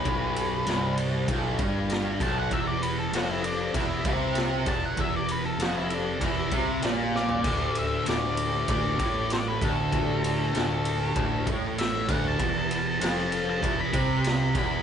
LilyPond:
<<
  \new Staff \with { instrumentName = "Lead electric guitar" } { \time 4/4 \key d \major \tempo 4 = 97 b'4. r2 a''16 fis''16 | e''16 d''16 b'16 a'16 fis'16 e'16 d'8 e'4 r8 a''16 fis''16 | e''16 d''16 b'16 a'16 fis'16 e'16 d'8 e'4 r8 d''8~ | d''8 e''8 d''4 d''4 d''16 b'16 a'8~ |
a'2~ a'8 r8 e''8 fis''16 a''16~ | a''16 a''4. a''8 b''4~ b''16 b''8 | }
  \new Staff \with { instrumentName = "Distorted electric guitar" } { \clef bass \time 4/4 \key d \major b,,4 c,4 b,,8 g,4 b,,8 | e,4 eis,4 e,8 bis,4 e,8 | e,4 eis,4 e,8 bis,8 ais,4 | d,4 d,4 d,8 a,4 d,8 |
d,4 d,4 d,8 a,4 d,8 | e,4 eis,4 e,8 c4 e,8 | }
  \new Staff \with { instrumentName = "Fingered electric bass" } { \clef bass \time 4/4 \key d \major b,,,4 c,,4 b,,,8 g,,4 b,,,8 | e,,4 eis,,4 e,,8 bis,,4 e,,8 | e,,4 eis,,4 e,,8 bis,,8 ais,,4 | d,,4 d,,4 d,,8 a,,4 d,,8 |
d,,4 d,,4 d,,8 a,,4 d,,8 | e,,4 eis,,4 e,,8 c,4 e,,8 | }
  \new DrumStaff \with { instrumentName = "Drums" } \drummode { \time 4/4 <bd cymr>8 cymr8 <cymr sn>8 cymr8 <bd cymr>8 <bd cymr>8 <cymr sn>8 <bd cymr sn>8 | <bd cymr>8 cymr8 <cymr sn>8 cymr8 <bd cymr>8 <bd cymr>8 <cymr sn>8 <bd cymr sn>8 | <bd cymr>8 cymr8 <cymr sn>8 cymr8 <bd cymr>8 <bd cymr>8 <cymr sn>8 sn16 tomfh16 | <cymc bd cymr>8 cymr8 <cymr sn>8 cymr8 <bd cymr>8 <bd cymr>8 <cymr sn>8 <bd cymr sn>8 |
<bd cymr>8 cymr8 <cymr sn>8 cymr8 <bd cymr>8 <bd cymr>8 <cymr sn>8 <bd cymr>8 | <bd cymr>8 cymr8 <cymr sn>8 cymr8 <bd cymr>8 <bd cymr>8 <cymr sn>8 <bd cymr>8 | }
>>